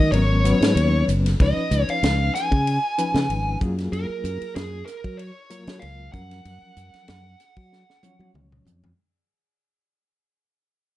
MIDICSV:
0, 0, Header, 1, 6, 480
1, 0, Start_track
1, 0, Key_signature, 6, "major"
1, 0, Tempo, 631579
1, 1062, Time_signature, 4, 2, 24, 8
1, 8335, End_track
2, 0, Start_track
2, 0, Title_t, "Lead electric guitar"
2, 0, Program_c, 0, 29
2, 0, Note_on_c, 0, 75, 81
2, 88, Note_off_c, 0, 75, 0
2, 91, Note_on_c, 0, 73, 60
2, 787, Note_off_c, 0, 73, 0
2, 1081, Note_on_c, 0, 75, 77
2, 1443, Note_on_c, 0, 77, 97
2, 1452, Note_off_c, 0, 75, 0
2, 1781, Note_off_c, 0, 77, 0
2, 1784, Note_on_c, 0, 80, 88
2, 2713, Note_off_c, 0, 80, 0
2, 2985, Note_on_c, 0, 70, 81
2, 3459, Note_off_c, 0, 70, 0
2, 3462, Note_on_c, 0, 68, 67
2, 3686, Note_off_c, 0, 68, 0
2, 3691, Note_on_c, 0, 70, 78
2, 3931, Note_on_c, 0, 73, 78
2, 3944, Note_off_c, 0, 70, 0
2, 4404, Note_on_c, 0, 77, 80
2, 4431, Note_off_c, 0, 73, 0
2, 4652, Note_off_c, 0, 77, 0
2, 4655, Note_on_c, 0, 78, 89
2, 6308, Note_off_c, 0, 78, 0
2, 8335, End_track
3, 0, Start_track
3, 0, Title_t, "Reed electric piano"
3, 0, Program_c, 1, 4
3, 94, Note_on_c, 1, 54, 66
3, 99, Note_on_c, 1, 59, 69
3, 100, Note_on_c, 1, 61, 62
3, 105, Note_on_c, 1, 70, 81
3, 322, Note_off_c, 1, 54, 0
3, 324, Note_off_c, 1, 59, 0
3, 325, Note_off_c, 1, 61, 0
3, 327, Note_off_c, 1, 70, 0
3, 336, Note_on_c, 1, 54, 74
3, 339, Note_on_c, 1, 59, 65
3, 344, Note_on_c, 1, 71, 78
3, 345, Note_on_c, 1, 61, 68
3, 1009, Note_off_c, 1, 54, 0
3, 1010, Note_off_c, 1, 59, 0
3, 1013, Note_off_c, 1, 71, 0
3, 1014, Note_off_c, 1, 61, 0
3, 1062, Note_on_c, 1, 53, 61
3, 1068, Note_on_c, 1, 61, 62
3, 1068, Note_on_c, 1, 63, 64
3, 1068, Note_on_c, 1, 71, 78
3, 1955, Note_off_c, 1, 53, 0
3, 1959, Note_off_c, 1, 61, 0
3, 1959, Note_off_c, 1, 63, 0
3, 1959, Note_off_c, 1, 71, 0
3, 2264, Note_on_c, 1, 61, 66
3, 2265, Note_on_c, 1, 53, 72
3, 2267, Note_on_c, 1, 63, 63
3, 2268, Note_on_c, 1, 71, 87
3, 2742, Note_on_c, 1, 54, 86
3, 2744, Note_off_c, 1, 53, 0
3, 2744, Note_off_c, 1, 61, 0
3, 2745, Note_off_c, 1, 63, 0
3, 2745, Note_off_c, 1, 71, 0
3, 2746, Note_on_c, 1, 65, 82
3, 2747, Note_on_c, 1, 58, 80
3, 2750, Note_on_c, 1, 68, 91
3, 3636, Note_off_c, 1, 54, 0
3, 3637, Note_off_c, 1, 65, 0
3, 3638, Note_off_c, 1, 58, 0
3, 3639, Note_off_c, 1, 68, 0
3, 4178, Note_on_c, 1, 54, 71
3, 4179, Note_on_c, 1, 58, 65
3, 4181, Note_on_c, 1, 65, 65
3, 4187, Note_on_c, 1, 70, 78
3, 4651, Note_off_c, 1, 54, 0
3, 4660, Note_on_c, 1, 54, 65
3, 4661, Note_off_c, 1, 58, 0
3, 4661, Note_off_c, 1, 70, 0
3, 4661, Note_on_c, 1, 61, 61
3, 4662, Note_off_c, 1, 65, 0
3, 4669, Note_on_c, 1, 53, 69
3, 4671, Note_on_c, 1, 70, 75
3, 5554, Note_off_c, 1, 54, 0
3, 5554, Note_off_c, 1, 61, 0
3, 5559, Note_off_c, 1, 53, 0
3, 5559, Note_off_c, 1, 70, 0
3, 6102, Note_on_c, 1, 54, 84
3, 6106, Note_on_c, 1, 73, 89
3, 6108, Note_on_c, 1, 53, 75
3, 6108, Note_on_c, 1, 61, 73
3, 6772, Note_off_c, 1, 54, 0
3, 6774, Note_off_c, 1, 53, 0
3, 6774, Note_off_c, 1, 61, 0
3, 6774, Note_off_c, 1, 73, 0
3, 8335, End_track
4, 0, Start_track
4, 0, Title_t, "Fingered electric bass"
4, 0, Program_c, 2, 33
4, 0, Note_on_c, 2, 51, 83
4, 81, Note_off_c, 2, 51, 0
4, 91, Note_on_c, 2, 32, 106
4, 396, Note_off_c, 2, 32, 0
4, 463, Note_on_c, 2, 44, 70
4, 557, Note_off_c, 2, 44, 0
4, 574, Note_on_c, 2, 39, 92
4, 773, Note_off_c, 2, 39, 0
4, 823, Note_on_c, 2, 30, 84
4, 1018, Note_off_c, 2, 30, 0
4, 1063, Note_on_c, 2, 37, 85
4, 1168, Note_off_c, 2, 37, 0
4, 1301, Note_on_c, 2, 37, 99
4, 1407, Note_off_c, 2, 37, 0
4, 1541, Note_on_c, 2, 37, 83
4, 1738, Note_off_c, 2, 37, 0
4, 1911, Note_on_c, 2, 49, 84
4, 2107, Note_off_c, 2, 49, 0
4, 2389, Note_on_c, 2, 49, 81
4, 2481, Note_off_c, 2, 49, 0
4, 2503, Note_on_c, 2, 32, 90
4, 2699, Note_off_c, 2, 32, 0
4, 2746, Note_on_c, 2, 42, 86
4, 2940, Note_off_c, 2, 42, 0
4, 2980, Note_on_c, 2, 42, 97
4, 3086, Note_off_c, 2, 42, 0
4, 3221, Note_on_c, 2, 42, 92
4, 3327, Note_off_c, 2, 42, 0
4, 3466, Note_on_c, 2, 42, 86
4, 3660, Note_off_c, 2, 42, 0
4, 3832, Note_on_c, 2, 54, 83
4, 4028, Note_off_c, 2, 54, 0
4, 4313, Note_on_c, 2, 54, 81
4, 4403, Note_off_c, 2, 54, 0
4, 4427, Note_on_c, 2, 37, 83
4, 4621, Note_off_c, 2, 37, 0
4, 4663, Note_on_c, 2, 42, 78
4, 4859, Note_off_c, 2, 42, 0
4, 4904, Note_on_c, 2, 42, 96
4, 5008, Note_off_c, 2, 42, 0
4, 5143, Note_on_c, 2, 42, 94
4, 5248, Note_off_c, 2, 42, 0
4, 5387, Note_on_c, 2, 42, 79
4, 5581, Note_off_c, 2, 42, 0
4, 5751, Note_on_c, 2, 54, 85
4, 5947, Note_off_c, 2, 54, 0
4, 6227, Note_on_c, 2, 54, 70
4, 6319, Note_off_c, 2, 54, 0
4, 6340, Note_on_c, 2, 37, 78
4, 6537, Note_off_c, 2, 37, 0
4, 6577, Note_on_c, 2, 41, 77
4, 6775, Note_off_c, 2, 41, 0
4, 8335, End_track
5, 0, Start_track
5, 0, Title_t, "Muted fingered electric bass strokes"
5, 1192, Note_on_c, 9, 29, 38
5, 1268, Note_off_c, 9, 29, 0
5, 1432, Note_on_c, 9, 29, 35
5, 1508, Note_off_c, 9, 29, 0
5, 3112, Note_on_c, 9, 29, 41
5, 3188, Note_off_c, 9, 29, 0
5, 3356, Note_on_c, 9, 29, 34
5, 3432, Note_off_c, 9, 29, 0
5, 5032, Note_on_c, 9, 29, 38
5, 5108, Note_off_c, 9, 29, 0
5, 8335, End_track
6, 0, Start_track
6, 0, Title_t, "Drums"
6, 101, Note_on_c, 9, 51, 71
6, 177, Note_off_c, 9, 51, 0
6, 343, Note_on_c, 9, 44, 92
6, 343, Note_on_c, 9, 51, 64
6, 419, Note_off_c, 9, 44, 0
6, 419, Note_off_c, 9, 51, 0
6, 473, Note_on_c, 9, 51, 59
6, 479, Note_on_c, 9, 38, 105
6, 549, Note_off_c, 9, 51, 0
6, 555, Note_off_c, 9, 38, 0
6, 585, Note_on_c, 9, 51, 81
6, 661, Note_off_c, 9, 51, 0
6, 826, Note_on_c, 9, 44, 75
6, 826, Note_on_c, 9, 51, 59
6, 902, Note_off_c, 9, 44, 0
6, 902, Note_off_c, 9, 51, 0
6, 956, Note_on_c, 9, 51, 63
6, 963, Note_on_c, 9, 38, 30
6, 1032, Note_off_c, 9, 51, 0
6, 1039, Note_off_c, 9, 38, 0
6, 1064, Note_on_c, 9, 36, 95
6, 1064, Note_on_c, 9, 51, 78
6, 1140, Note_off_c, 9, 36, 0
6, 1140, Note_off_c, 9, 51, 0
6, 1302, Note_on_c, 9, 44, 82
6, 1302, Note_on_c, 9, 51, 61
6, 1378, Note_off_c, 9, 44, 0
6, 1378, Note_off_c, 9, 51, 0
6, 1433, Note_on_c, 9, 51, 54
6, 1509, Note_off_c, 9, 51, 0
6, 1545, Note_on_c, 9, 51, 85
6, 1551, Note_on_c, 9, 38, 105
6, 1621, Note_off_c, 9, 51, 0
6, 1627, Note_off_c, 9, 38, 0
6, 1788, Note_on_c, 9, 44, 78
6, 1788, Note_on_c, 9, 51, 54
6, 1794, Note_on_c, 9, 38, 32
6, 1864, Note_off_c, 9, 44, 0
6, 1864, Note_off_c, 9, 51, 0
6, 1870, Note_off_c, 9, 38, 0
6, 1915, Note_on_c, 9, 36, 76
6, 1915, Note_on_c, 9, 51, 58
6, 1991, Note_off_c, 9, 36, 0
6, 1991, Note_off_c, 9, 51, 0
6, 2030, Note_on_c, 9, 51, 65
6, 2106, Note_off_c, 9, 51, 0
6, 2267, Note_on_c, 9, 44, 88
6, 2267, Note_on_c, 9, 51, 61
6, 2343, Note_off_c, 9, 44, 0
6, 2343, Note_off_c, 9, 51, 0
6, 2397, Note_on_c, 9, 51, 52
6, 2403, Note_on_c, 9, 38, 109
6, 2473, Note_off_c, 9, 51, 0
6, 2479, Note_off_c, 9, 38, 0
6, 2507, Note_on_c, 9, 51, 74
6, 2583, Note_off_c, 9, 51, 0
6, 2745, Note_on_c, 9, 44, 74
6, 2745, Note_on_c, 9, 51, 55
6, 2746, Note_on_c, 9, 36, 91
6, 2821, Note_off_c, 9, 44, 0
6, 2821, Note_off_c, 9, 51, 0
6, 2822, Note_off_c, 9, 36, 0
6, 2876, Note_on_c, 9, 51, 60
6, 2882, Note_on_c, 9, 38, 32
6, 2952, Note_off_c, 9, 51, 0
6, 2958, Note_off_c, 9, 38, 0
6, 2987, Note_on_c, 9, 51, 71
6, 3063, Note_off_c, 9, 51, 0
6, 3227, Note_on_c, 9, 44, 87
6, 3227, Note_on_c, 9, 51, 61
6, 3303, Note_off_c, 9, 44, 0
6, 3303, Note_off_c, 9, 51, 0
6, 3355, Note_on_c, 9, 51, 56
6, 3431, Note_off_c, 9, 51, 0
6, 3465, Note_on_c, 9, 51, 77
6, 3471, Note_on_c, 9, 38, 112
6, 3541, Note_off_c, 9, 51, 0
6, 3547, Note_off_c, 9, 38, 0
6, 3704, Note_on_c, 9, 44, 86
6, 3704, Note_on_c, 9, 51, 54
6, 3710, Note_on_c, 9, 38, 28
6, 3780, Note_off_c, 9, 44, 0
6, 3780, Note_off_c, 9, 51, 0
6, 3786, Note_off_c, 9, 38, 0
6, 3833, Note_on_c, 9, 36, 73
6, 3834, Note_on_c, 9, 51, 60
6, 3909, Note_off_c, 9, 36, 0
6, 3910, Note_off_c, 9, 51, 0
6, 3945, Note_on_c, 9, 51, 75
6, 4021, Note_off_c, 9, 51, 0
6, 4182, Note_on_c, 9, 44, 87
6, 4182, Note_on_c, 9, 51, 69
6, 4258, Note_off_c, 9, 44, 0
6, 4258, Note_off_c, 9, 51, 0
6, 4311, Note_on_c, 9, 51, 56
6, 4317, Note_on_c, 9, 38, 106
6, 4387, Note_off_c, 9, 51, 0
6, 4393, Note_off_c, 9, 38, 0
6, 4421, Note_on_c, 9, 51, 78
6, 4497, Note_off_c, 9, 51, 0
6, 4663, Note_on_c, 9, 44, 79
6, 4663, Note_on_c, 9, 51, 61
6, 4664, Note_on_c, 9, 36, 87
6, 4739, Note_off_c, 9, 44, 0
6, 4739, Note_off_c, 9, 51, 0
6, 4740, Note_off_c, 9, 36, 0
6, 4796, Note_on_c, 9, 51, 63
6, 4802, Note_on_c, 9, 38, 32
6, 4872, Note_off_c, 9, 51, 0
6, 4878, Note_off_c, 9, 38, 0
6, 4904, Note_on_c, 9, 51, 87
6, 4980, Note_off_c, 9, 51, 0
6, 5142, Note_on_c, 9, 44, 90
6, 5142, Note_on_c, 9, 51, 67
6, 5218, Note_off_c, 9, 44, 0
6, 5218, Note_off_c, 9, 51, 0
6, 5271, Note_on_c, 9, 51, 58
6, 5277, Note_on_c, 9, 38, 28
6, 5347, Note_off_c, 9, 51, 0
6, 5353, Note_off_c, 9, 38, 0
6, 5379, Note_on_c, 9, 51, 84
6, 5385, Note_on_c, 9, 38, 102
6, 5455, Note_off_c, 9, 51, 0
6, 5461, Note_off_c, 9, 38, 0
6, 5622, Note_on_c, 9, 44, 79
6, 5622, Note_on_c, 9, 51, 61
6, 5628, Note_on_c, 9, 38, 29
6, 5698, Note_off_c, 9, 44, 0
6, 5698, Note_off_c, 9, 51, 0
6, 5704, Note_off_c, 9, 38, 0
6, 5749, Note_on_c, 9, 51, 62
6, 5752, Note_on_c, 9, 36, 79
6, 5825, Note_off_c, 9, 51, 0
6, 5828, Note_off_c, 9, 36, 0
6, 5872, Note_on_c, 9, 38, 53
6, 5948, Note_off_c, 9, 38, 0
6, 6003, Note_on_c, 9, 38, 56
6, 6079, Note_off_c, 9, 38, 0
6, 6103, Note_on_c, 9, 44, 87
6, 6103, Note_on_c, 9, 48, 75
6, 6179, Note_off_c, 9, 44, 0
6, 6179, Note_off_c, 9, 48, 0
6, 6236, Note_on_c, 9, 48, 61
6, 6312, Note_off_c, 9, 48, 0
6, 6348, Note_on_c, 9, 47, 75
6, 6424, Note_off_c, 9, 47, 0
6, 6478, Note_on_c, 9, 45, 74
6, 6554, Note_off_c, 9, 45, 0
6, 6586, Note_on_c, 9, 43, 82
6, 6586, Note_on_c, 9, 44, 75
6, 6662, Note_off_c, 9, 43, 0
6, 6662, Note_off_c, 9, 44, 0
6, 6716, Note_on_c, 9, 43, 85
6, 6792, Note_off_c, 9, 43, 0
6, 8335, End_track
0, 0, End_of_file